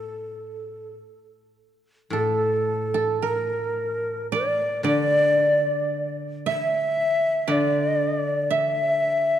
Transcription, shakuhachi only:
Already playing: A4
2.13 A4
3.24 A#4
4.33 D5
4.86 D5
6.49 E5
7.52 D5
8.52 E5

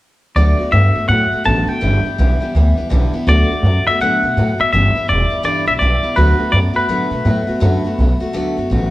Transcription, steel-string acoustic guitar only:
0.36 D3 F#3 A3 B3 F#4
0.59 A3 B3 F#4
0.71 D3 F#3 A3 B3 F#4
0.95 A3 B3 F#4
1.08 F#3 A3 B3 F#4
1.31 A3 B3 F#4
1.44 D3 F#3 A3 B3 F#4
1.67 A3 B3 F#4
1.81 G2 D3 E3 G3 B3 E4
2.04 E3 G3 B3 E4
2.18 G2 D3 E3 G3 B3 E4
2.40 E3 G3 B3 E4
2.55 E3 G3 B3 E4
2.77 E3 G3 B3 E4
2.89 G2 D3 E3 G3 B3 E4
3.13 E3 G3 B3 E4
3.27 D3 F#3 A3 B3 F#4
3.50 A3 B3 F#4
3.65 F#3 A3 B3 F#4
3.89 A3 B3 F#4
4.01 D3 F#3 A3 B3 F#4
4.23 A3 B3 F#4
4.37 F#3 A3 B3 F#4
4.58 A3 B3 F#4
4.73 G2 D3 E3 G3 B3 E4
4.95 E3 G3 B3 E4
5.08 E3 G3 B3 E4
5.30 E3 G3 B3 E4
5.43 G2 D3 E3 G3 B3 E4
5.66 E3 G3 B3 E4
5.81 E3 G3 B3 E4
6.03 E3 G3 B3 E4
6.16 D3 F#3 A3 B3 F#4
6.39 A3 B3 F#4
6.52 F#3 A3 B3 F#4
6.74 A3 B3 F#4
6.89 D3 F#3 A3 B3 F#4
7.11 A3 B3 F#4
7.25 F#3 A3 B3 F#4
7.47 A3 B3 F#4
7.60 D3 F#3 A3 B3 F#4
7.84 A3 B3 F#4
7.99 F#3 A3 B3 F#4
8.20 A3 B3 F#4
8.33 D3 F#3 A3 B3 F#4
8.57 A3 B3 F#4
8.70 F#3 A3 B3 F#4

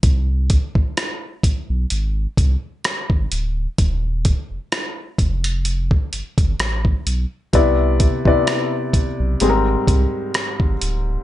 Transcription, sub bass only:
0.03 C2
0.75 B1
1.44 B1
1.70 B1
1.91 G#1
2.37 C2
3.10 G#1
3.32 D1
3.78 D#1
4.50 F1
5.18 F1
6.13 G1
6.38 G1
6.59 A1
7.06 B1
7.53 C2
8.25 B1
8.93 B1
9.20 B1
9.41 G#1
9.88 C2
10.60 G#1
10.82 D1

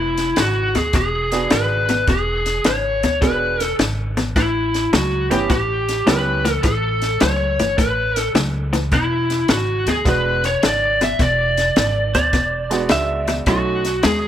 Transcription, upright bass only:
Already playing: E1
0.37 G#1
0.75 D2
0.94 E1
1.51 G#1
2.08 E1
2.65 G#1
3.03 D2
3.22 E1
3.79 G#1
4.36 A1
4.93 C#2
5.31 G1
5.50 A1
6.07 C#2
6.64 A1
7.22 C#2
7.59 G1
7.78 A1
8.35 C#2
8.92 E1
9.49 G#1
9.86 D2
10.05 E1
10.63 G#1
11.19 E1
11.76 G#1
12.14 D2
12.33 E1
12.90 C#2
13.46 B1
14.04 D#2

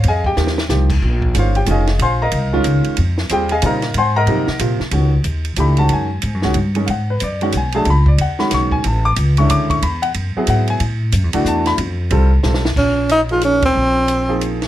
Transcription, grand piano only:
0.08 G#4 D#5 F5 G#5
0.26 G4 G5
0.37 F3 A#3 D#4 G4
0.69 F3 A#3 D#4 G4
1.35 D#3 G#3 C#4 F4
1.39 F4 C5 C#5 F5
1.56 G4 G5
1.66 D#3 G#3 C#4 F4
1.71 G#4 D#5 F5 G#5
2.02 C5 F5 G#5 C6
2.22 A#4 D#5 F5 A#5
2.53 D#3 G#3 C#4 F4
3.31 G3 C4 F4 G4 G#4 G5
3.51 G#4 D#5 F5 G#5
3.62 C#3 G3 C4 D#4 A#4 D#5 F5 A#5
3.98 C5 F#5 G#5 C6
4.16 A#4 D#5 F#5 A#5
4.28 C3 F3 A#3 D#4
4.60 C3 F3 A#3 F4
4.92 D#3 G#3 C#4 F#4
5.58 E3 A3 D4 G4 B5
5.78 D#3 G#3 C#4 F#4 A5
5.93 G#5
6.43 D#3 G#3 C#4 F#4
6.75 D#3 G#3 C#4 D#4
6.86 F5 F#5
7.10 B4
7.24 D5
7.42 D#3 G#3 C#4 F#4 F#5
7.57 G#5
7.74 F#3 A3 D4 G#4 A5
7.90 B5
8.08 D5
8.21 F#5
8.39 D#3 G#3 C#4 F#4 B5
8.54 C#6
8.72 G#5
8.86 A5
9.05 D6
9.38 D3 G#3 C#4 E4 C#6
9.51 D6
9.70 C#6
9.83 B5
10.02 F#5
10.37 F#3 B3 E4 G#4
10.50 F#5
10.70 G#5
11.34 E3 A3 D4 F#4
11.48 A5
11.67 B5
12.11 G3 C4 F4 A4
12.43 G3 C4 F4 A4
13.31 F3 A#3 D#4 G#4
14.29 F3 A#3 D#4 G#4

